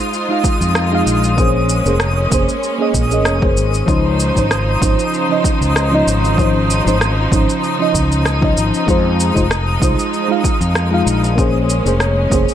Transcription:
Already playing: fm electric piano G#3 D#4 F4 C5, string section G#3 D#4 F4, synth texture D#6
0.13 shaker
0.29 fm electric piano G#3 D#4 F4 F5
0.44 kick, shaker
0.61 fretless electric bass F2, shaker
0.75 cross-stick, shaker
0.91 fm electric piano G#3 D#4 F4 F5
1.06 fretless electric bass A#1, shaker
1.24 shaker
1.37 fm electric piano A#3 C#4 G#4 C5, string section A#3 C#4, kick, shaker
1.69 shaker
1.85 fretless electric bass F1, fm electric piano A#3 C#4 G#4 C5, shaker
2.00 cross-stick, shaker
2.30 fretless electric bass F1, fm electric piano A#3 C#4 G#4 C5, kick, shaker
2.49 shaker
2.63 shaker
2.79 fm electric piano A#3 C#4 G#4 D#5
2.94 fretless electric bass A#1, kick, shaker
3.10 fm electric piano A#3 C#4 G#4 D#5, shaker
3.25 fretless electric bass F1, cross-stick, shaker
3.41 fm electric piano A#3 C#4 G#4 C5, kick
3.57 fretless electric bass G#1, shaker
3.74 shaker
3.86 fretless electric bass C#2, string section C#3 F3 D#4 C5, fm electric piano F3 C#4 D#4 C5, kick, shaker
4.20 shaker
4.35 fretless electric bass G#1, fm electric piano F3 C#4 D#4 C5, kick, shaker
4.51 cross-stick, shaker
4.80 fretless electric bass G#1, fm electric piano F3 C#4 D#4 C5, kick, shaker
4.99 shaker
5.14 shaker
5.28 fm electric piano F3 C#4 D#4 D#5
5.44 kick, shaker
5.61 fretless electric bass C#2, shaker
5.76 cross-stick, shaker
5.91 fm electric piano F3 C#4 D#4 D#5
6.07 fretless electric bass G#1, shaker
6.25 shaker
6.37 fm electric piano F3 C#4 D#4 C5, kick, shaker
6.70 shaker
6.85 fretless electric bass G#1, fm electric piano F3 C#4 D#4 C5, shaker
7.01 cross-stick, shaker
7.31 fretless electric bass G#1, fm electric piano F3 C#4 D#4 C5, kick, shaker
7.50 shaker
7.64 shaker
7.79 fm electric piano F3 C#4 D#4 D#5
7.94 fretless electric bass C#2, kick, shaker
8.12 shaker
8.25 cross-stick, shaker
8.41 fm electric piano F3 C#4 D#4 D#5, kick
8.57 fretless electric bass G#1, shaker
8.74 shaker
8.87 fretless electric bass F2, fm electric piano G#3 D#4 F4 C5, string section G#3, kick, shaker
9.20 shaker
9.34 fretless electric bass F1, fm electric piano G#3 D#4 F4 C5, kick, shaker
9.51 cross-stick, shaker
9.80 fretless electric bass C2, fm electric piano G#3 D#4 F4 C5, kick, shaker
9.99 shaker
10.14 shaker
10.28 fm electric piano G#3 D#4 F4 F5
10.44 kick, shaker
10.61 fretless electric bass F2, shaker
10.75 cross-stick, shaker
10.91 fm electric piano G#3 D#4 F4 F5
11.06 fretless electric bass A#1, shaker
11.24 shaker
11.36 fm electric piano A#3 C#4 G#4, string section A#3 C#4, kick, shaker
11.40 fm electric piano C5
11.70 shaker
11.84 fretless electric bass F1, fm electric piano A#3 C#4 G#4 C5, shaker
12.00 cross-stick, shaker
12.30 fretless electric bass F1, fm electric piano A#3 C#4 G#4 C5, kick, shaker
12.49 shaker

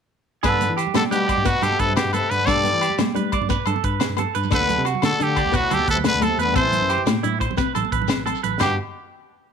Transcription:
0.43 tine electric piano G2, trombone D3, nylon-string guitar D4, clean electric guitar A4, trumpet B4, kick, closed hi-hat, muted conga, low agogo, shekere
0.53 high conga, low conga
0.61 nylon-string guitar B3, closed hi-hat, low conga, shekere
0.70 tine electric piano E3
0.77 clean electric guitar G4, closed hi-hat, low agogo, shekere
0.87 low conga
0.94 trombone D3, tine electric piano G3, nylon-string guitar A3, trumpet A4, snare, closed hi-hat, muted conga, high conga, low agogo, shekere
1.11 trombone B2, tine electric piano G3, nylon-string guitar D4, trumpet G4, clean electric guitar B4, closed hi-hat, low conga
1.20 low conga
1.28 clean electric guitar D5, kick, closed hi-hat, low agogo
1.37 tine electric piano G2, high conga, low conga
1.45 trombone B2, nylon-string guitar B3, trumpet F#4, clean electric guitar B4, kick, closed hi-hat, muted conga, low conga, shekere
1.62 tine electric piano G2, trombone B2, trumpet G4, clean electric guitar A4, closed hi-hat, low conga, low agogo
1.72 high conga, low conga, shekere
1.79 tine electric piano G2, trombone C3, trumpet A4, clean electric guitar B4, kick, closed hi-hat
1.89 low conga
1.96 trombone B2, nylon-string guitar B3, trumpet G4, snare, closed hi-hat, muted conga, low agogo, shekere
2.05 tine electric piano G2
2.13 trombone C3, nylon-string guitar B3, trumpet A4, clean electric guitar B4, closed hi-hat, low conga, low agogo
2.30 tine electric piano G2, trombone D3, trumpet B4, muted clean electric guitar stroke, closed hi-hat, shekere
2.39 low conga, shekere
2.46 tine electric piano G2, nylon-string guitar D4, clean electric guitar A4, trumpet D5, kick, closed hi-hat, muted conga, low agogo, shekere
2.50 trombone G3
2.56 high conga, low conga
2.63 nylon-string guitar B3, closed hi-hat, low conga, shekere
2.73 tine electric piano E3
2.81 clean electric guitar G4, closed hi-hat, low agogo, shekere
2.90 low conga
2.98 tine electric piano G3, nylon-string guitar A3, snare, closed hi-hat, muted conga, high conga, low agogo, shekere
3.15 tine electric piano G3, nylon-string guitar D4, clean electric guitar B4, closed hi-hat, low conga
3.25 low conga
3.32 clean electric guitar D5, kick, closed hi-hat, low agogo
3.42 tine electric piano G2, high conga, low conga
3.49 nylon-string guitar B3, clean electric guitar B4, kick, closed hi-hat, muted conga, low conga, shekere
3.66 tine electric piano G2, clean electric guitar A4, closed hi-hat, low conga, low agogo
3.76 high conga, low conga
3.84 tine electric piano G2, clean electric guitar B4, kick, closed hi-hat
4.00 nylon-string guitar B3, snare, closed hi-hat, muted conga, low agogo, shekere
4.10 tine electric piano G2
4.17 nylon-string guitar B3, clean electric guitar A4, closed hi-hat, high conga, low conga, low agogo
4.35 tine electric piano G2, clean electric guitar B4, closed hi-hat, shekere
4.43 low conga, shekere
4.50 tine electric piano D2, trombone D3, nylon-string guitar D4, clean electric guitar A4, trumpet B4, kick, closed hi-hat, muted conga, low agogo, shekere
4.61 high conga, low conga
4.67 nylon-string guitar B3, closed hi-hat, low conga, shekere
4.78 tine electric piano C3
4.85 clean electric guitar F#4, closed hi-hat, low agogo, shekere
4.95 low conga
5.02 tine electric piano D3, trombone D3, nylon-string guitar A3, trumpet A4, snare, closed hi-hat, muted conga, high conga, low agogo, shekere
5.20 tine electric piano D3, nylon-string guitar D4, trumpet G4, clean electric guitar A4, closed hi-hat, low conga
5.24 trombone D3
5.29 low conga
5.36 clean electric guitar D5, kick, closed hi-hat, low agogo
5.45 tine electric piano D2, high conga, low conga
5.52 nylon-string guitar B3, trumpet F#4, clean electric guitar B4, kick, closed hi-hat, muted conga, low conga, shekere
5.57 trombone A2
5.71 tine electric piano D2, trumpet G4, clean electric guitar A4, closed hi-hat, low conga, low agogo
5.76 trombone B2, high conga, low conga, shekere
5.88 tine electric piano D2, trumpet A4, clean electric guitar B4, kick, closed hi-hat
5.92 trombone C3, low conga
6.04 nylon-string guitar A3, trumpet B4, snare, closed hi-hat, muted conga, low agogo, shekere
6.08 trombone D3
6.14 tine electric piano D2
6.21 nylon-string guitar A3, clean electric guitar A4, trumpet A4, closed hi-hat, high conga, low conga, low agogo
6.26 trombone C3
6.38 tine electric piano E2, clean electric guitar B4, trumpet B4, closed hi-hat, shekere
6.44 trombone D3, low conga, shekere
6.53 tine electric piano A1, nylon-string guitar C4, clean electric guitar A4, trumpet C5, kick, closed hi-hat, muted conga, low conga, low agogo, shekere
6.59 trombone E3
6.64 high conga
6.72 nylon-string guitar B2, closed hi-hat, low conga, shekere
6.81 tine electric piano F#2
6.89 clean electric guitar G4, closed hi-hat, low agogo, shekere
6.98 low conga
7.06 tine electric piano A2, nylon-string guitar A3, snare, closed hi-hat, muted conga, high conga, low agogo, shekere
7.23 tine electric piano A2, nylon-string guitar D4, clean electric guitar E4, closed hi-hat, low conga
7.40 clean electric guitar C5, kick, closed hi-hat, low conga, low agogo
7.49 tine electric piano A1, high conga, low conga
7.57 nylon-string guitar C4, clean electric guitar B4, kick, closed hi-hat, muted conga, shekere
7.75 tine electric piano A1, clean electric guitar A4, closed hi-hat, low conga, low agogo
7.85 high conga
7.92 tine electric piano A1, clean electric guitar B4, kick, closed hi-hat
8.02 low conga
8.08 nylon-string guitar C4, snare, closed hi-hat, high conga, low agogo, shekere
8.18 tine electric piano A1
8.26 nylon-string guitar C4, clean electric guitar A4, closed hi-hat, low conga, low agogo
8.35 shekere
8.43 tine electric piano A1, clean electric guitar B4, closed hi-hat, low conga
8.60 tine electric piano G2, trombone B2, nylon-string guitar G3, clean electric guitar G4, trumpet G4, snare, floor tom, crash, muted conga, low agogo, shekere

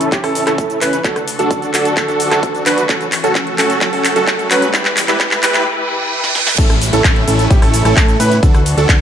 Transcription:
Already playing: string section E3 A3 C#4, riser
0.01 closed hi-hat, shaker
0.12 analog synth bass A1, supersaw synth C#4 E4 G4, grand piano G4, kick, clap, closed hi-hat, shaker
0.24 analog synth bass A1, supersaw synth C#4 E4 A4, grand piano A4, cross-stick, open hi-hat
0.35 open hi-hat, shaker
0.47 analog synth bass A1, supersaw synth C#4 E4 A4, grand piano A4, cross-stick, clap, closed hi-hat, shaker
0.58 analog synth bass A2, supersaw synth C#4 E4 A4, grand piano A4, kick, closed hi-hat, shaker
0.70 closed hi-hat, shaker
0.81 analog synth bass A1, supersaw synth C#4 E4 B4, grand piano B4, clap, open hi-hat, shaker
0.93 closed hi-hat, shaker
1.04 analog synth bass D2, string section D3 D4 F#4 A4, supersaw synth D4 F#4 A4, grand piano A4, kick, clap, closed hi-hat, shaker
1.16 cross-stick, closed hi-hat, shaker
1.28 open hi-hat, shaker
1.39 analog synth bass D2, supersaw synth D4 F#4 A4, grand piano A4, closed hi-hat, shaker
1.51 analog synth bass D2, supersaw synth D4 F#4 A4, grand piano A4, kick, closed hi-hat, shaker
1.62 closed hi-hat, shaker
1.74 analog synth bass D2, supersaw synth D4 F#4 A4, grand piano A4, clap, open hi-hat, shaker
1.85 closed hi-hat, shaker
1.97 analog synth bass D2, supersaw synth D4 F#4 A4, grand piano A4, kick, clap, closed hi-hat, shaker
2.08 analog synth bass D2, supersaw synth D4 F#4 A4, grand piano A4, closed hi-hat, shaker
2.20 open hi-hat, shaker
2.31 analog synth bass D2, supersaw synth D4 F#4 A4, grand piano A4, cross-stick, clap, closed hi-hat, shaker
2.43 analog synth bass D2, supersaw synth D4 F#4 A4, grand piano A4, kick, closed hi-hat, shaker
2.55 closed hi-hat, shaker
2.66 analog synth bass D2, supersaw synth D4 F#4 B4, grand piano B4, clap, open hi-hat, shaker
2.78 closed hi-hat, shaker
2.89 analog synth bass F#1, string section A3 C#4, supersaw synth C#4 F#4 A4, grand piano A4, kick, clap, closed hi-hat, shaker
3.01 closed hi-hat, shaker
3.12 clap, open hi-hat, shaker
3.23 analog synth bass F#1, supersaw synth C#4 F#4 A4, grand piano A4, closed hi-hat, shaker
3.35 analog synth bass F#1, supersaw synth C#4 F#4 A4, kick, clap, closed hi-hat, shaker
3.47 closed hi-hat
3.58 analog synth bass F#1, supersaw synth C#4 F#4 A4, grand piano A4, clap, open hi-hat, shaker
3.70 closed hi-hat, shaker
3.81 analog synth bass F#1, supersaw synth C#4 F#4 A4, grand piano A4, kick, clap, closed hi-hat, shaker
3.93 analog synth bass F#1, supersaw synth C#4 F#4 A4, grand piano A4, open hi-hat
4.05 clap, open hi-hat, shaker
4.16 analog synth bass F#1, supersaw synth C#4 F#4 A4, grand piano A4, closed hi-hat, shaker
4.27 analog synth bass F#1, supersaw synth C#4 F#4 A4, grand piano A4, kick, clap, closed hi-hat, shaker
4.39 closed hi-hat, shaker
4.51 analog synth bass F#2, supersaw synth C#4 F#4 B4, grand piano B4, clap, open hi-hat, shaker
4.62 closed hi-hat, shaker
4.74 analog synth bass E1, string section E3 E4 G4 B4, supersaw synth E4 G4 B4, kick, clap, closed hi-hat, shaker
4.85 clap, closed hi-hat, shaker
4.97 clap, open hi-hat, shaker
5.08 analog synth bass E1, supersaw synth E4 G4 B4, grand piano B4, clap, closed hi-hat, shaker
5.20 analog synth bass E1, supersaw synth E4 G4 B4, grand piano B4, kick, clap, closed hi-hat, shaker
5.31 clap, closed hi-hat, shaker
5.43 analog synth bass E1, supersaw synth E4 G4 B4, grand piano B4, clap, open hi-hat, shaker
5.54 clap, closed hi-hat, shaker
5.66 reverse cymbal
6.24 snare
6.35 snare
6.47 snare
6.58 analog synth bass A1, string section A3 C#4 E4, supersaw synth C#4 E4 A4, grand piano A4, kick, closed hi-hat, crash, downlifter, shaker
6.70 cross-stick, closed hi-hat, shaker
6.81 open hi-hat, ride, shaker
6.93 analog synth bass A1, supersaw synth C#4 E4 A4, grand piano A4, closed hi-hat, shaker
7.04 analog synth bass A1, supersaw synth C#4 E4 A4, kick, clap, closed hi-hat, shaker
7.16 closed hi-hat
7.27 analog synth bass A1, supersaw synth C#4 E4 A4, grand piano A4, open hi-hat, ride, shaker
7.39 closed hi-hat, shaker
7.50 analog synth bass A1, supersaw synth C#4 E4 G4, grand piano G4, kick, closed hi-hat, shaker
7.62 analog synth bass A1, supersaw synth C#4 E4 A4, grand piano A4, cross-stick, open hi-hat
7.74 open hi-hat, ride, shaker
7.85 analog synth bass A1, supersaw synth C#4 E4 A4, grand piano A4, cross-stick, closed hi-hat, shaker
7.97 analog synth bass A2, supersaw synth C#4 E4 A4, grand piano A4, kick, clap, closed hi-hat, shaker
8.08 closed hi-hat, shaker
8.20 analog synth bass A2, supersaw synth C#4 E4 B4, grand piano B4, open hi-hat, ride, shaker
8.31 closed hi-hat, shaker
8.43 analog synth bass D2, string section D3 D4 F#4 A4, supersaw synth D4 F#4 A4, grand piano A4, kick, closed hi-hat, shaker
8.54 cross-stick, closed hi-hat, shaker
8.66 open hi-hat, ride, shaker
8.77 analog synth bass D2, supersaw synth D4 F#4 A4, grand piano A4, closed hi-hat, shaker
8.89 analog synth bass D2, supersaw synth D4 F#4 A4, grand piano A4, kick, clap, closed hi-hat, shaker

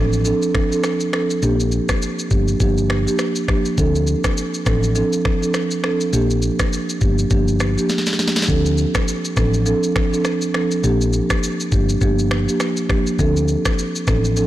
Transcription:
Already playing: fingered electric bass A1, marimba F3 C4 D4 A4
0.13 shaker
0.25 marimba F3 C4 D4 A4, shaker
0.42 shaker
0.55 finger snap, kick, cross-stick
0.71 marimba F3 C4 D4 A4, shaker
0.84 finger snap, cross-stick, shaker
1.00 shaker
1.13 marimba F3 C4 D4 A4, finger snap, cross-stick
1.30 shaker
1.42 fingered electric bass A#1, marimba F3 A#3 D4 G4, shaker
1.60 shaker
1.72 shaker
1.89 finger snap, kick, cross-stick, shaker
2.02 shaker
2.19 shaker
2.31 fingered electric bass G1, marimba F3 A#3 D4 G4, kick, shaker
2.48 shaker
2.60 fingered electric bass G1, marimba F3 A#3 D4 G4, kick, shaker
2.78 shaker
2.90 finger snap, cross-stick
3.07 marimba F3 A#3 D4 G4, shaker
3.19 finger snap, cross-stick, shaker
3.36 shaker
3.48 marimba F3 A#3 D4 G4, finger snap, kick, cross-stick
3.65 shaker
3.78 fingered electric bass D2, marimba F3 C4 D4 A4, kick, shaker
3.95 shaker
4.07 shaker
4.24 finger snap, kick, cross-stick, shaker
4.38 shaker
4.54 shaker
4.66 fingered electric bass A1, marimba F3 C4 D4 A4, finger snap, kick, cross-stick, shaker
4.83 shaker
4.95 marimba F3 C4 D4 A4, shaker
5.13 shaker
5.25 finger snap, kick, cross-stick
5.42 marimba F3 C4 D4 A4, shaker
5.54 finger snap, cross-stick, shaker
5.71 shaker
5.84 marimba F3 C4 D4 A4, finger snap, cross-stick
6.01 shaker
6.13 fingered electric bass A#1, marimba F3 A#3 D4 G4, shaker
6.31 shaker
6.42 shaker
6.59 finger snap, kick, cross-stick, shaker
6.73 shaker
6.90 shaker
7.01 fingered electric bass G1, marimba F3 A#3 D4 G4, kick, shaker
7.19 shaker
7.31 fingered electric bass G1, marimba F3 A#3 D4 G4, kick, shaker
7.48 shaker
7.60 finger snap, cross-stick, shaker
7.77 marimba F3 A#3 D4 G4, shaker
7.89 snare, shaker
7.98 snare
8.06 snare, shaker
8.13 snare
8.19 marimba F3 A#3 D4 G4, snare, shaker
8.28 snare
8.36 snare, shaker
8.42 snare
8.48 fingered electric bass D2, marimba F3 C4 D4 A4, kick, shaker
8.66 shaker
8.78 shaker
8.95 finger snap, kick, cross-stick, shaker
9.08 shaker
9.25 shaker
9.36 fingered electric bass A1, marimba F3 C4 D4 A4, finger snap, kick, cross-stick, shaker
9.54 shaker
9.66 marimba F3 C4 D4 A4, shaker
9.83 shaker
9.96 finger snap, kick, cross-stick
10.12 marimba F3 C4 D4 A4, shaker
10.25 finger snap, cross-stick, shaker
10.42 shaker
10.54 marimba F3 C4 D4 A4, finger snap, cross-stick
10.71 shaker
10.83 fingered electric bass A#1, marimba F3 A#3 D4 G4, shaker
11.01 shaker
11.13 shaker
11.30 finger snap, kick, cross-stick, shaker
11.44 shaker
11.60 shaker
11.72 fingered electric bass G1, marimba F3 A#3 D4 G4, kick, shaker
11.89 shaker
12.01 fingered electric bass G1, marimba F3 A#3 D4 G4, kick, shaker
12.19 shaker
12.31 finger snap, cross-stick
12.48 marimba F3 A#3 D4 G4, shaker
12.60 finger snap, cross-stick, shaker
12.77 shaker
12.89 marimba F3 A#3 D4 G4, finger snap, kick, cross-stick
13.07 shaker
13.19 fingered electric bass D2, marimba F3 C4 D4 A4, kick, shaker
13.37 shaker
13.48 shaker
13.65 finger snap, kick, cross-stick, shaker
13.79 shaker
13.96 shaker
14.07 fingered electric bass A1, marimba F3 C4 D4 A4, finger snap, kick, cross-stick, shaker
14.25 shaker
14.36 marimba F3 C4 D4 A4, shaker

